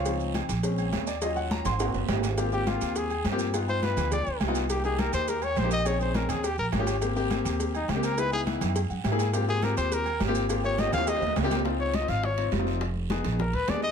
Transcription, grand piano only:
\new Staff \with { instrumentName = "Grand piano" } { \time 4/4 \key aes \mixolydian \tempo 4 = 207 << { <f' c'' des'' f''>4 r2 r8 d''8 | ees''8 ges''8 bes''8 c'''4. r4 | \key aes \major r1 | r1 |
r1 | r1 | r1 | r2 r8 ges''8 fes''8 aes''8 |
r1 | r1 | \key des \major r1 | r1 | } \\ { <f c' ees'>4. r8 <aes c' des'>4. r8 | <ges des' f'>4. r8 <bes c' ges'>8 r4. | <bes c' f' g'>16 r16 <bes c' f' g'>16 r16 <bes c' f' g'>4. r8. <bes c' f' g'>8 r16 | <b ees' f'>16 r16 <b ees' f'>16 r16 <b ees' f'>4. r8. <b ees' f'>8 r16 |
<bes ees' g'>16 r16 <bes ees' g'>16 r16 <bes ees' g'>4. r8. <bes ees' g'>8 r16 | <c' des' ees' aes'>16 r16 <c' des' ees' aes'>16 r16 <c' des' ees' aes'>4 r4 r16 <des' f' g'>8 r16 | <bes c' g'>16 r16 <bes c' g'>16 r16 <bes c'>4. r8. <bes c' g'>8 r16 | <ces' ees' fes'>16 r16 <ces' ees' fes'>16 r16 <ces' ees' fes'>4 r4 r16 <bes fes' aes'>8 r16 |
<bes c' f' g'>16 r16 <bes c' f' g'>16 r16 <bes c' f' g'>4. r8. <bes c' f' g'>8 r16 | <bes c' f' g'>16 r16 <bes c' f' g'>16 r16 <bes c' f' g'>4. r8. <bes c' f' g'>8 r16 | <c' ees' f'>4 r16 <c' ees' f'>8. r8 <c' ees' f'>8 r16 <c' ees' f'>8. | r4 <ces' ees' aes'>8 r16 <ces' ees' aes'>16 r4 <ces' d' aes'>8. r16 | } >> }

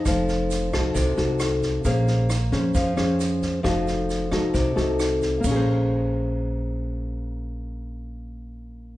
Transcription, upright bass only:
\new Staff \with { instrumentName = "Upright bass" } { \clef bass \time 4/4 \key bes \minor \tempo 4 = 134 f,,4. c,8 c,8 c,4. | bes,,4. f,8 f,8 f,4. | f,,4. c,8 c,8 c,4. | bes,,1~ |
bes,,1 | }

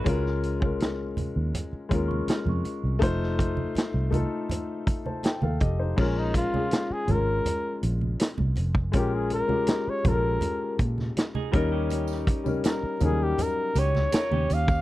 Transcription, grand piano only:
\new Staff \with { instrumentName = "Grand piano" } { \time 4/4 \key bes \dorian \tempo 4 = 81 << { r1 | r2 r8. <c'' a''>16 g''16 <a' f''>16 <g' ees''>16 <ees' c''>16~ | <ees' c''>16 r2. r8. | r1 |
r1 | } \\ { <aes des' f' bes'>8 r16 <aes des' f' bes'>4. r16 <aes des' f' bes'>4~ <aes des' f' bes'>16 r16 | <a ees' f' c''>4~ <a ees' f' c''>16 r16 <a ees' f' a'>4.~ <a ees' f' a'>16 r8. | <aes des' f' bes'>8 r16 <aes des' f' aes'>8 r16 <aes des' f' bes'>4.~ <aes des' f' bes'>16 r8. | <aes des' f' bes'>8 r16 <aes des' f' g'>8 r16 <aes des' f' a' bes'>4.~ <aes des' f' a' bes'>16 r16 <g des' ees' bes'>8~ |
<g des' ees' bes'>8 r16 <g des' ees' bes'>8 r16 <ges g des' ees' bes'>4.~ <ges g des' ees' bes'>16 r8. | } >> }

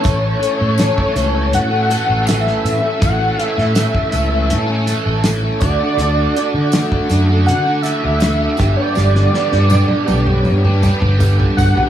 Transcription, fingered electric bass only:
\new Staff \with { instrumentName = "Fingered electric bass" } { \clef bass \time 4/4 \key a \mixolydian \tempo 4 = 81 a,,8 r16 a,8 r16 cis,8 a,8. a,,8. a,16 r16 | a,,8 r16 a,8 r16 cis,8 a,8. a,,8. d,16 r16 | d,8 r16 d8 r16 fis,8 d8. d,8. g,,16 r16 | g,,8 r16 g,8 r16 b,,8 g,8. g,,8. g,,16 r16 | }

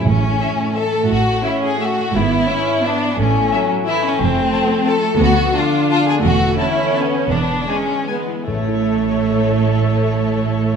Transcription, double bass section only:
\new Staff \with { instrumentName = "Double bass section" } { \clef bass \time 3/4 \key a \major \tempo 4 = 169 a,,4 r2 | a,,4 r2 | gis,,4 r2 | a,,4 r2 |
f,,4 r2 | d,4 r2 | e,,4 r2 | e,,4 r2 |
a,,2.~ | a,,2. | }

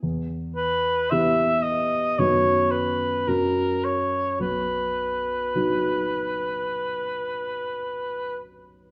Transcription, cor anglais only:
\new Staff \with { instrumentName = "Cor anglais" } { \time 4/4 \key b \major \tempo 4 = 53 r8 b'8 e''8 dis''8 cis''8 b'8 ais'8 cis''8 | b'2.~ b'8 r8 | }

